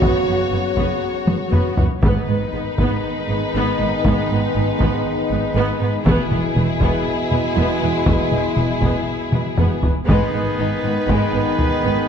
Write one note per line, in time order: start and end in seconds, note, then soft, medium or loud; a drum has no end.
0.00 0.10 F#1 medium
0.00 0.10 F#2 medium
0.00 1.75 C#3 medium
0.00 1.74 F#3 medium
0.00 1.75 B3 medium
0.00 0.26 B3 medium
0.00 1.75 F#4 medium
0.00 1.80 F#4 medium
0.00 1.84 C#5 medium
0.00 taiko medium
0.27 0.35 F#1 soft
0.27 0.35 F#2 soft
0.27 0.35 B3 soft
0.52 0.60 F#1 soft
0.52 0.60 F#2 soft
0.52 0.60 B3 soft
0.76 0.84 F#1 medium
0.76 0.85 F#2 medium
0.76 1.01 B3 soft
0.76 taiko medium
1.27 1.35 F#1 soft
1.27 1.36 F#2 soft
1.27 1.35 B3 soft
1.27 taiko high medium
1.51 1.60 F#1 medium
1.51 1.60 F#2 soft
1.51 1.76 B3 medium
1.51 taiko low-mid medium
1.77 1.86 F#1 soft
1.77 1.85 F#2 soft
1.77 1.85 B3 soft
1.77 taiko low medium
2.02 2.12 G#1 medium
2.02 2.10 G#2 medium
2.02 6.02 D#3 medium
2.02 6.02 G#3 medium
2.02 2.27 B3 medium
2.02 6.02 B3 medium
2.02 6.02 D#4 medium
2.02 6.01 B4 medium
2.02 taiko medium
2.28 2.37 G#1 soft
2.28 2.36 G#2 soft
2.28 2.36 B3 soft
2.53 2.61 G#1 soft
2.53 2.61 G#2 soft
2.53 2.62 B3 soft
2.78 2.88 G#1 medium
2.78 2.86 G#2 medium
2.78 3.03 B3 medium
2.78 taiko medium
3.28 3.38 G#1 soft
3.28 3.36 G#2 soft
3.28 3.37 B3 soft
3.55 3.63 G#1 medium
3.55 3.63 G#2 medium
3.55 3.78 B3 medium
3.79 3.88 G#1 soft
3.79 3.87 G#2 soft
3.79 3.88 B3 soft
4.04 4.14 G#1 medium
4.04 4.12 G#2 medium
4.04 4.29 B3 medium
4.04 taiko medium
4.30 4.39 G#1 medium
4.30 4.38 G#2 medium
4.30 4.39 B3 soft
4.54 4.64 G#1 medium
4.54 4.62 G#2 soft
4.54 4.63 B3 soft
4.78 4.88 G#1 medium
4.78 4.86 G#2 medium
4.78 5.04 B3 medium
4.78 taiko medium
5.30 5.38 G#1 medium
5.30 5.38 G#2 medium
5.30 5.39 B3 medium
5.55 5.63 G#1 medium
5.55 5.63 G#2 medium
5.55 5.80 B3 medium
5.81 5.89 G#1 medium
5.81 5.89 G#2 medium
5.81 5.90 B3 medium
6.05 6.15 E1 medium
6.05 6.13 E2 medium
6.05 9.80 B2 medium
6.05 9.79 G#3 medium
6.05 9.80 B3 medium
6.05 6.30 B3 medium
6.05 9.80 E4 medium
6.05 9.89 E4 medium
6.05 9.84 G#4 medium
6.05 taiko medium
6.31 6.40 E1 soft
6.31 6.39 E2 medium
6.31 6.40 B3 medium
6.31 taiko mid soft
6.56 6.65 E1 medium
6.56 6.64 E2 medium
6.56 6.65 B3 soft
6.56 taiko mid medium
6.81 6.90 E1 medium
6.81 6.89 E2 medium
6.81 7.05 B3 medium
6.81 taiko medium
7.31 7.40 E1 soft
7.31 7.39 E2 soft
7.31 7.40 B3 soft
7.31 taiko mid soft
7.56 7.66 E1 medium
7.56 7.64 E2 medium
7.56 7.80 B3 medium
7.81 7.91 E1 soft
7.81 7.90 E2 soft
7.81 7.89 B3 soft
8.06 8.15 E1 medium
8.06 8.14 E2 medium
8.06 8.31 B3 soft
8.06 taiko medium
8.32 8.40 E1 soft
8.32 8.40 E2 soft
8.32 8.40 B3 soft
8.32 taiko mid soft
8.56 8.65 E1 soft
8.56 8.65 E2 soft
8.56 8.66 B3 soft
8.56 taiko mid medium
8.81 8.90 E1 medium
8.81 8.89 E2 medium
8.81 9.06 B3 soft
8.81 taiko medium
9.32 9.41 E1 soft
9.32 9.40 E2 soft
9.32 9.41 B3 soft
9.32 taiko mid medium
9.57 9.66 E1 medium
9.57 9.65 E2 medium
9.57 9.81 B3 medium
9.57 taiko low-mid medium
9.83 9.92 E1 soft
9.83 9.91 E2 soft
9.83 9.91 B3 soft
9.83 taiko low medium
10.07 10.16 G#1 medium
10.07 10.16 G#2 medium
10.07 12.08 D#3 medium
10.07 10.32 G#3 medium
10.07 12.08 G#3 medium
10.07 10.31 B3 medium
10.07 12.08 B3 medium
10.07 12.08 D#4 medium
10.07 12.08 G#4 medium
10.07 12.08 B4 medium
10.07 taiko medium
10.33 10.42 G#1 soft
10.33 10.42 G#2 soft
10.33 10.41 B3 soft
10.33 10.42 B3 soft
10.58 10.67 G#1 soft
10.58 10.67 G#2 soft
10.58 10.66 B3 soft
10.58 10.67 D#4 medium
10.82 10.92 G#1 medium
10.82 10.92 G#2 soft
10.82 10.90 B3 soft
10.82 10.93 B3 soft
11.08 11.16 G#1 medium
11.08 11.17 G#2 medium
11.08 11.33 G#3 medium
11.08 11.32 B3 medium
11.08 taiko medium
11.33 11.41 G#1 soft
11.33 11.43 G#2 soft
11.33 11.41 B3 medium
11.33 11.43 B3 soft
11.59 taiko low medium
11.83 11.92 G#1 medium
11.83 11.92 G#2 soft
11.83 11.91 B3 medium
11.83 11.93 B3 medium